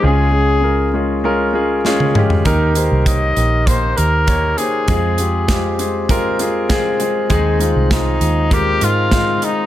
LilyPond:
<<
  \new Staff \with { instrumentName = "Trumpet" } { \time 4/4 \key f \minor \tempo 4 = 99 aes'4. r2 r8 | r4 ees''4 c''8 bes'4 aes'8~ | aes'4. r2 r8 | r4 ees'4 g'8 f'4 ees'8 | }
  \new Staff \with { instrumentName = "Grand piano" } { \time 4/4 \key f \minor <aes des' f' aes'>8 <aes des' f' aes'>8 <aes des' f' bes'>8 <aes des' f' aes'>8 <aes des' f' bes'>8 <aes des' f' aes'>8 <aes des' f' aes'>8 <aes des' f' g'>8 | <bes ees' g' bes'>8 <bes ees' g' c''>8 <bes ees' g' des''>8 <bes ees' g' bes'>8 <bes ees' g' c''>8 <bes ees' g' bes'>8 <bes ees' g' des''>8 <bes ees' g' c''>8 | <aes c' f' aes'>8 <aes c' f' g'>8 <aes c' f' g'>8 <aes c' f' aes'>8 <aes c' f' bes'>8 <aes c' f' aes'>8 <aes c' f' aes'>8 <aes c' f' aes'>8 | <aes c' ees' aes'>8 <aes c' ees' f'>8 <aes c' ees' f'>8 <aes c' ees' f'>8 <aes c' ees' bes'>8 <aes c' ees' f'>8 <aes c' ees' f'>8 <aes c' ees' f'>8 | }
  \new Staff \with { instrumentName = "Grand piano" } { \clef bass \time 4/4 \key f \minor des4. r2 r8 | ees4. r2 r8 | r1 | ees4. r2 r8 | }
  \new Staff \with { instrumentName = "Fingered electric bass" } { \clef bass \time 4/4 \key f \minor des,1 | ees,8. c,8. bes,,4 ees,4 r8 | f,1 | ees,8. c,8. ees,4 aes,4 r8 | }
  \new DrumStaff \with { instrumentName = "Drums" } \drummode { \time 4/4 r4 r4 r4 sn16 tommh16 toml16 tomfh16 | <hh bd>8 hh8 <hh bd>8 hh8 <hh bd>8 hh8 <hh bd>8 hh8 | <hh bd>8 hh8 <hh bd sn>8 hh8 <hh bd>8 hh8 <hh bd sn>8 hh8 | <hh bd>8 hh8 <hh bd sn>8 hh8 <hh bd>8 hh8 <hh bd sn>8 hh8 | }
>>